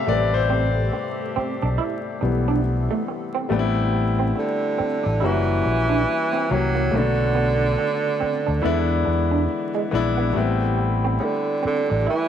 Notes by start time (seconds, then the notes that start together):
Already playing: C3 G3 A3 B3 G4 A4 E5 F5 A5 B5
0.07 A1 G3 A3 C4 B4 D5
0.34 C5
0.50 C4
0.93 muted clean electric guitar stroke
1.36 C4, muted fingered electric bass stroke
1.62 B1 D4
1.78 E4
2.21 B1 E3 G3 B3, muted clean electric guitar stroke
2.48 D4
2.91 A3
3.08 muted clean electric guitar stroke
3.35 C4
3.49 A1 G3 A3 B3 C4
3.53 D4
3.59 E4
3.93 muted clean electric guitar stroke
4.19 C4
4.36 D3, muted clean electric guitar stroke
4.78 C4, muted fingered electric bass stroke
5.03 A1 D4
5.20 F#1 E3 G3 A#3 C#4 E4
5.24 E3 F#4
5.63 A#1, muted clean electric guitar stroke
5.89 D4
6.33 C4
6.49 C2 E3 F#3 A#3 C#4 G4, muted clean electric guitar stroke
6.75 A#3
6.91 B1 C#3 A3 B3 C#4
6.95 D3 F#4
7.35 B3
7.78 muted clean electric guitar stroke
8.20 C4, muted fingered electric bass stroke
8.46 D2 D4
8.62 E2 E3 G#3 B3 D4 E4
9.05 E2, muted clean electric guitar stroke
9.31 D4
9.75 G#3
9.91 A#1 E3 G#3 B3 D4 E4, muted clean electric guitar stroke
10.17 B3
10.33 A1 G3 A3 B3 G4 A4
10.37 C4 E4
10.77 muted clean electric guitar stroke
11.04 C4
11.18 C#3, muted clean electric guitar stroke
11.24 D3
11.63 D3 C4, muted fingered electric bass stroke
11.90 A1 D4
12.07 E3 E4